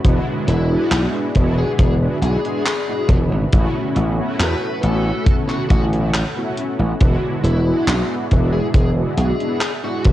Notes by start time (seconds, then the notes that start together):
Already playing: B5
0.04 E1 G#3 B3 D4 E4 F#4 G#4 D5 E5, kick, closed hi-hat
0.48 E1 E4, closed hi-hat
0.70 G#3 B3 D4 E4 F#4
0.91 B1, clap, closed hi-hat
1.34 E1 G#3 B3 D4 E4 F#4, kick, closed hi-hat
1.58 G#4
1.78 E1 G#4, kick, closed hi-hat
2.00 G#3 B3 D4 E4 F#4
2.21 B1 G#3 B3 D4 E4 F#4 G#4, closed hi-hat
2.44 G#3 B3 D4 E4 F#4, closed hi-hat
2.65 G#4, clap, closed hi-hat
2.87 G#3 B3 D4 E4 F#4
3.09 E1, kick, closed hi-hat
3.31 G#1
3.51 A1 A3 B3 C#4 E4 F#4 A4 C#5 F#5, kick, closed hi-hat
3.96 A1, closed hi-hat
4.17 A3 B3 C#4 E4 F#4, muted slap bass stroke
4.39 E2 B4, clap, closed hi-hat
4.82 A1 A3 B3 C#4 E4 F#4 A4, closed hi-hat
5.26 kick, closed hi-hat
5.48 A3 B3 C#4 E4 F#4, clap
5.69 A1 A3 B3 C#4 E4 F#4, kick, closed hi-hat
5.91 A3 B3 C#4 E4 F#4, closed hi-hat
6.14 clap, closed hi-hat
6.35 A3 B3 C#4 E4 F#4
6.57 closed hi-hat
6.79 A1
6.99 E1 G#3 B3 D4 E4 F#4 G#4 D5 E5, kick, closed hi-hat
7.43 E1 E4, closed hi-hat
7.66 G#3 B3 D4 E4 F#4
7.87 B1, clap, closed hi-hat
8.30 E1 G#3 B3 D4 E4 F#4, kick, closed hi-hat
8.53 G#4
8.74 E1 G#4, kick, closed hi-hat
8.96 G#3 B3 D4 E4 F#4
9.17 B1 G#3 B3 D4 E4 F#4 G#4, closed hi-hat
9.40 G#3 B3 D4 E4 F#4, closed hi-hat
9.61 clap, closed hi-hat
9.83 G#3 B3 D4 E4 F#4
10.05 E1, kick, closed hi-hat